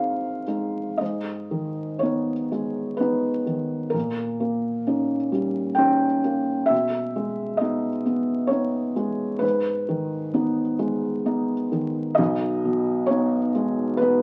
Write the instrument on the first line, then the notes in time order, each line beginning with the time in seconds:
felt piano
Already playing: G#2 G#3 C4 D#4 G#4 F5
0.47 G#3 D#4
0.98 G#2 D#5
1.51 D#3
1.99 B3 D#4 C#5
2.52 G#3
2.97 B3 D#4 B4
3.46 D#3
3.90 A#2 A#4
4.40 A#3
4.87 C#4 D#4
5.32 G3
5.75 C#4 D#4 G5
6.24 A#3
6.66 B2 E5
7.16 G#3
7.57 B3 D#4 D#5
8.06 B3
8.47 B3 D#4 C#5
8.96 G#3
9.39 G#2 B4
9.89 D#3
10.34 B3 D#4
10.79 G#3
11.26 B3 D#4
11.72 D#3
12.15 B1 D#5
12.65 B2
13.06 B3 C#5
13.10 D#4
13.55 G#3
13.97 B3 B4
14.01 D#4